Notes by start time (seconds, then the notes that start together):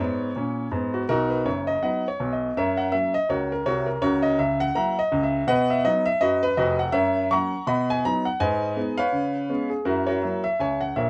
Already playing: C#5
0.00 G#2 B3
0.36 A#2 C#4
0.72 G#2 B3
0.94 F#4
1.09 B1 B2 D#4 F#4 A#4
1.30 B4
1.45 F#1 F#2 C#5
1.67 D#5
1.82 F#3 B3 D#4 B4 D#5 F#5
2.08 C#5
2.20 B1 B2
2.33 D#5
2.57 F#2 A#4 C#5 E5
2.77 F#5
2.92 F#3 A#3 C#4 E5
3.14 D#5
3.29 C#2 F#4 A#4 C#5
3.52 A#4
3.66 C2 C3 F#4 A#4 C#5
3.86 A#4
4.02 C#2 C#3 F#4 A#4 C#5
4.22 D#5
4.38 C#2 C#3 E5
4.60 F#5
4.75 F#3 A#3 E4 E5 F#5 A#5
4.99 D#5
5.12 C#2 C#3
5.23 E5
5.47 B2 B4 D#5 F#5
5.70 E5
5.85 F#3 B3 D#4 D#5
6.06 E5
6.21 F#2 F#4 B4 D#5
6.43 B4
6.57 F1 F2 F#4 B4 D#5
6.79 F#5
6.92 F#2 A#4 C#5 E5
7.31 F#3 A#3 C#4 F#5 A#5 C#6
7.67 B2 D#5 F#5 B5
7.90 G#5
8.05 F#3 B3 D#4 A#5
8.25 F#5
8.40 G#2 B4 D#5 G#5
8.76 G#3 B3 D#4
8.98 B4 C#5 F5
9.12 C#3
9.49 G#3 B3 C#4
9.70 G#4
9.85 F#2 E4 F#4 A#4
10.07 F#4 A#4 C#5
10.22 F#3 A#3 E4
10.44 E5
10.60 C#2 C#5 E5 G#5
10.81 F#5
10.96 A#1 A#2 A#4 C#5 E5